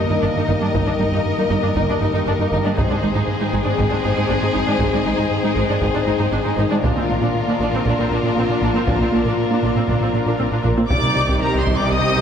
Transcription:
Already playing: D#3 A#3 D#4 G4 A#4 D#5
0.10 G2 D#3 D#4
0.22 G1 G2 G3 D4
0.36 G2 D#4
0.48 G1 G2 D#3 D#4
0.61 G2 G3 A#3 D4
0.74 G1 G2 D#3 D#4, taiko
0.87 G2 G3 A#3 D4
0.99 G1 G2 G3 A#3 D#4
1.12 G2 D#3 D#4
1.26 G2
1.37 G2 G3 A#3 D#4
1.50 G1 G2 D#3 D#4
1.62 G2 D4 D#4
1.75 G1 G2 D#3 D#4, taiko
1.89 G2 D4 D#4
2.01 G1 G2 G3 D#4
2.14 G2 D#3 D#4
2.26 G1 G2 G3 D4
2.39 G2 D#4
2.52 G1 G2 D#3 D#4
2.65 G2 G3 A#3 D4
2.77 G#1 G#2 D#3 G#3 C4 D#4 G#4 C5 D#5, taiko
2.91 G#2 G#3 D4 D#4
3.02 G#1 G#2 G#3 D#4
3.16 G#2 G#3 D#4
3.28 G#2
3.41 G#2 G#3 D#4
3.54 G#1 G#2 G#3 D#4
3.66 G#2 D4 G#4
3.79 G#1 G#2 G#3 D#4, taiko
3.90 G#2 D4 G#4
4.04 G#1 G#2 C4 D#4
4.17 G#2 G#3 D#4
4.29 G#1 G#2 C4 D4
4.42 G#2 D#4 G#4
4.54 G#1 G#2 G#3 D#4
4.68 G#2 G#3 D4 D#4
4.79 G#1 G#2 G#3 D#4, taiko
4.93 G#2 G#3 D4 D#4
5.05 G#1 G#2 G#3 D#4
5.18 G#2 G#3 D#4
5.32 G#2
5.43 G#2 G#3 D#4
5.56 G#1 G#2 G#3 D#4
5.69 G#2 D4 G#4
5.81 G#1 G#2 G#3 D#4, taiko
5.94 G#2 D4 G#4
6.07 G#1 G#2 C4 D#4
6.20 G#2 G#3 D#4
6.32 G#1 G#2 C4 D4
6.45 G#2 D#4 G#4
6.57 G#1 G#2 G#3 D#4
6.71 G#2 G#3 D4 D#4
6.83 A#1 A#2 F3 A#3 D4 F4 A#4 D5, taiko
6.96 A#2 A#3 C4 F4
7.09 A#1 A#2 A#3 D4 F4
7.21 A#2 A#3 D4
7.34 A#2
7.48 A#2 A#3 D4 F4
7.60 A#1 A#2 A#3 D4
7.73 A#2 C4 A#4
7.85 A#1 A#2 A#3 D4, taiko
7.98 A#2 C4 A#4
8.10 A#1 A#2 D4
8.23 A#2 A#3 D4
8.36 A#1 A#2 C4 D4
8.49 A#2 D4 A#4
8.61 A#1 A#2 A#3 D4
8.74 A#2 A#3 C4 F4
8.87 A#1 A#2 A#3 D4, taiko
8.99 A#2 A#3 C4 F4
9.12 A#1 A#2 A#3 D4 F4
9.25 A#2 A#3 D4
9.37 A#2
9.51 A#2 A#3 D4 F4
9.63 A#1 A#2 A#3 D4
9.76 A#2 C4 A#4
9.88 A#1 A#2 A#3 D4, taiko
10.01 A#2 C4 A#4
10.14 A#1 A#2 D4
10.26 A#2 A#3 D4
10.40 A#1 A#2 C4 D4
10.52 A#2 D4 A#4
10.64 A#1 A#2 A#3 D4
10.77 A#2 A#3 C4 F4
10.90 C2 C3 D#3 G3 C4 D#4 G4 D5 D6, taiko
11.03 C3 G3
11.16 C3 G3
11.28 C2 C3, taiko
11.42 C3 G3 A#4 A#5
11.54 C2 C4
11.59 C5 C6
11.67 C2 C3, taiko
11.75 C3 D5 D6
11.80 G3
11.92 C2 C3 D#5 D#6
12.05 C2
12.17 C3 G3

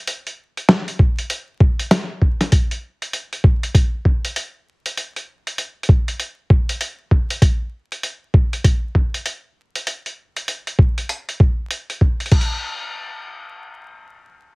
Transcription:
0.07 closed hi-hat
0.27 closed hi-hat
0.57 closed hi-hat
0.69 snare
0.88 closed hi-hat
0.99 kick
1.19 closed hi-hat
1.30 closed hi-hat
1.60 kick
1.80 closed hi-hat
1.91 snare, closed hi-hat
2.22 kick
2.41 snare, closed hi-hat
2.52 kick, closed hi-hat
2.71 closed hi-hat
3.02 closed hi-hat
3.13 closed hi-hat
3.33 closed hi-hat
3.44 kick
3.63 closed hi-hat
3.75 kick, closed hi-hat
4.05 kick
4.25 closed hi-hat
4.36 closed hi-hat
4.86 closed hi-hat
4.97 closed hi-hat
5.16 closed hi-hat
5.47 closed hi-hat
5.58 closed hi-hat
5.83 closed hi-hat
5.89 kick
6.08 closed hi-hat
6.20 closed hi-hat
6.50 kick
6.69 closed hi-hat
6.81 closed hi-hat
7.11 kick
7.30 closed hi-hat
7.42 kick, closed hi-hat
7.92 closed hi-hat
8.03 closed hi-hat
8.34 kick
8.53 closed hi-hat
8.64 kick, closed hi-hat
8.95 kick
9.14 closed hi-hat
9.26 closed hi-hat
9.75 closed hi-hat
9.87 closed hi-hat
10.06 closed hi-hat
10.37 closed hi-hat
10.48 closed hi-hat
10.67 closed hi-hat
10.79 kick
10.98 closed hi-hat
11.09 closed hi-hat
11.29 closed hi-hat
11.40 kick
11.71 closed hi-hat
11.90 closed hi-hat
12.01 kick
12.20 closed hi-hat
12.26 closed hi-hat
12.32 kick, closed hi-hat, crash
12.41 closed hi-hat

